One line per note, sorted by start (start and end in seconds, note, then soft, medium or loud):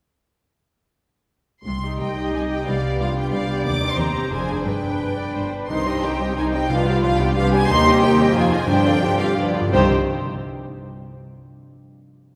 1.65 1.94 C2 soft
1.65 1.95 C2 soft
1.65 2.66 C3 soft
1.65 1.97 C6 medium
1.83 2.81 G3 soft
1.83 2.15 D#4 soft
1.83 2.15 G4 soft
2.00 2.28 C2 soft
2.00 2.49 D#4 soft
2.00 2.62 D#5 soft
2.00 2.34 G5 soft
2.16 2.48 D#4 soft
2.16 2.48 G4 soft
2.16 2.68 C5 soft
2.34 2.61 C2 soft
2.34 2.62 C2 soft
2.34 3.31 G4 soft
2.34 2.41 G#5 soft
2.49 2.66 D#4 soft
2.49 2.68 D#4 soft
2.49 2.65 G4 soft
2.49 2.67 G5 medium
2.66 2.94 C2 medium
2.66 2.95 C2 medium
2.66 3.66 C3 soft
2.66 2.82 B3 soft
2.66 2.82 G4 soft
2.66 2.99 D5 medium
2.66 3.00 F5 medium
2.83 4.31 G3 soft
2.83 3.15 B3 soft
2.83 3.15 G4 soft
2.99 3.26 C2 soft
2.99 3.27 C2 medium
2.99 3.47 D4 soft
2.99 3.33 F4 soft
2.99 3.16 F5 medium
3.16 3.48 B3 soft
3.16 3.47 G4 soft
3.16 3.66 B4 soft
3.16 3.32 G5 medium
3.32 3.59 C2 medium
3.32 4.12 G4 soft
3.32 3.96 D5 medium
3.32 3.64 F5 medium
3.48 3.64 B3 soft
3.48 3.66 D4 soft
3.48 3.64 G4 soft
3.64 3.92 D#2 medium
3.64 4.31 D#3 soft
3.64 3.89 D6 medium
3.81 4.12 C4 soft
3.81 4.32 D#4 soft
3.81 4.12 G4 soft
3.91 3.98 C6 medium
3.97 4.25 D#2 medium
3.97 4.64 C5 medium
3.97 4.32 C5 soft
3.97 4.30 A#5 medium
4.13 4.30 C4 soft
4.13 4.31 G4 soft
4.13 4.30 G4 soft
4.30 4.59 F1 medium
4.30 4.59 F2 medium
4.30 4.66 F2 soft
4.30 4.48 D4 soft
4.30 4.48 G#4 soft
4.30 4.65 G#5 medium
4.46 4.99 D4 soft
4.46 4.66 D4 soft
4.46 4.66 G#4 soft
4.46 5.16 D5 soft
4.64 4.94 G1 soft
4.64 5.71 G2 soft
4.64 4.95 G2 soft
4.64 4.97 B4 soft
4.64 5.51 G5 medium
4.82 5.71 B3 soft
4.82 5.17 D4 soft
4.82 5.17 B4 soft
5.00 5.29 G1 soft
5.00 5.30 G2 soft
5.00 5.51 D4 soft
5.00 5.16 B4 soft
5.17 5.52 D4 soft
5.17 5.52 B4 soft
5.17 5.71 D5 soft
5.17 5.35 D5 soft
5.35 5.65 G1 soft
5.35 5.64 G2 soft
5.35 5.71 B4 soft
5.35 5.53 C5 soft
5.52 5.71 D4 soft
5.52 5.70 D4 soft
5.52 5.70 B4 soft
5.69 6.00 C2 soft
5.69 6.68 C3 soft
5.69 6.16 C3 medium
5.69 5.86 D#3 soft
5.69 6.01 D#4 medium
5.69 5.85 D#4 soft
5.69 5.86 D#4 soft
5.69 5.85 C5 soft
5.69 6.01 C6 medium
5.86 6.85 G3 soft
5.86 6.03 G3 soft
5.86 6.03 C4 soft
5.86 6.04 G4 soft
5.86 6.03 D#5 soft
6.02 6.32 C2 medium
6.02 6.20 D#3 soft
6.02 6.51 D#4 soft
6.02 6.20 D#4 soft
6.02 6.36 G4 soft
6.02 6.20 C5 soft
6.02 6.37 G5 medium
6.19 6.36 G3 soft
6.19 6.36 C4 soft
6.19 6.36 G4 soft
6.19 6.71 C5 soft
6.19 6.37 D#5 soft
6.35 6.66 C2 medium
6.35 6.52 D#3 soft
6.35 6.69 D#4 medium
6.35 6.52 D#4 soft
6.35 7.35 G4 soft
6.35 6.52 C5 soft
6.35 6.44 G#5 medium
6.53 6.70 G3 soft
6.53 6.70 C4 soft
6.53 6.71 D#4 soft
6.53 6.70 G4 soft
6.53 6.70 D#5 soft
6.53 6.70 G5 medium
6.69 6.99 C2 medium
6.69 7.69 C3 medium
6.69 7.16 C3 medium
6.69 6.86 F3 soft
6.69 6.86 D4 soft
6.69 7.35 F4 medium
6.69 6.85 F4 medium
6.69 6.85 B4 medium
6.69 7.02 F5 medium
6.86 8.34 G3 soft
6.86 7.03 G3 soft
6.86 7.03 B3 soft
6.86 7.03 G4 medium
6.86 7.03 D5 medium
7.03 7.32 C2 medium
7.03 7.19 F3 soft
7.03 7.19 D4 soft
7.03 7.51 D4 soft
7.03 7.20 F4 soft
7.03 7.19 B4 medium
7.03 7.19 F5 medium
7.18 7.36 G3 medium
7.18 7.36 B3 medium
7.18 7.35 G4 medium
7.18 7.70 B4 soft
7.18 7.35 D5 soft
7.18 7.36 G5 medium
7.35 7.64 C2 medium
7.35 7.51 F3 soft
7.35 7.51 D4 medium
7.35 7.51 F4 soft
7.35 7.67 G4 medium
7.35 8.16 G4 medium
7.35 7.51 B4 medium
7.35 7.52 F5 medium
7.52 7.68 G3 medium
7.52 7.68 B3 medium
7.52 7.70 D4 soft
7.52 7.68 G4 medium
7.52 7.69 D5 soft
7.52 7.68 G#5 loud
7.68 7.97 D#2 medium
7.68 8.35 D#3 medium
7.68 7.83 D#3 medium
7.68 7.84 D#4 medium
7.68 8.32 G4 medium
7.68 7.83 C5 medium
7.68 8.01 C6 loud
7.85 8.01 G3 medium
7.85 8.01 C4 medium
7.85 8.49 D#4 soft
7.85 8.01 G4 medium
7.85 8.01 D#5 medium
8.01 8.30 D#2 medium
8.01 8.17 D#3 medium
8.01 8.17 D#4 medium
8.01 8.18 D#4 medium
8.01 8.49 C5 soft
8.01 8.18 C5 medium
8.01 8.33 G5 medium
8.17 8.34 G3 medium
8.17 8.34 C4 medium
8.17 8.35 G4 medium
8.17 8.35 D#5 medium
8.34 8.68 F2 medium
8.34 8.63 F2 medium
8.34 8.49 D#3 medium
8.34 8.49 D#4 medium
8.34 8.67 F4 medium
8.34 8.50 F4 medium
8.34 8.50 C5 medium
8.34 8.67 G#5 medium
8.50 8.66 F3 medium
8.50 8.68 D#4 soft
8.50 8.67 F4 medium
8.50 8.68 G#4 medium
8.50 9.17 C5 medium
8.50 8.68 D#5 medium
8.67 9.35 G2 medium
8.67 8.96 G2 medium
8.67 9.14 G2 medium
8.67 8.83 F3 medium
8.67 9.00 D4 medium
8.67 8.83 D4 medium
8.67 8.83 G4 medium
8.67 8.83 C5 medium
8.67 9.18 G5 medium
8.82 9.01 D3 medium
8.82 9.73 F3 soft
8.82 9.01 C4 medium
8.82 9.02 F4 medium
8.82 9.02 D5 medium
9.00 9.32 G2 medium
9.00 9.18 F3 soft
9.00 9.53 D4 soft
9.00 9.18 D4 soft
9.00 9.36 G4 medium
9.00 9.18 G4 soft
9.00 9.18 C5 medium
9.18 9.36 D3 medium
9.18 9.36 C4 soft
9.18 9.36 F4 soft
9.18 9.37 C5 soft
9.18 9.36 D5 soft
9.18 9.36 F5 medium
9.36 9.74 G2 soft
9.36 9.68 G2 medium
9.36 9.43 G2 soft
9.36 9.53 F3 soft
9.36 9.53 D4 soft
9.36 9.54 F4 medium
9.36 9.53 G4 soft
9.36 9.54 B4 soft
9.36 9.72 D5 medium
9.45 9.52 G2 soft
9.53 9.60 G2 medium
9.53 9.72 D3 soft
9.53 9.72 B3 soft
9.53 9.73 D4 soft
9.53 9.72 F4 soft
9.53 9.74 B4 soft
9.53 9.72 D5 soft
9.61 9.68 G2 medium
9.68 9.92 C3 medium
9.68 9.92 G3 medium
9.72 9.92 C2 medium
9.72 9.92 C3 medium
9.72 9.89 C3 medium
9.72 9.92 D#3 medium
9.72 9.92 C4 medium
9.72 9.92 D#4 medium
9.72 9.92 G4 medium
9.72 9.92 C5 medium
9.76 9.92 C5 medium
9.76 9.92 D#5 medium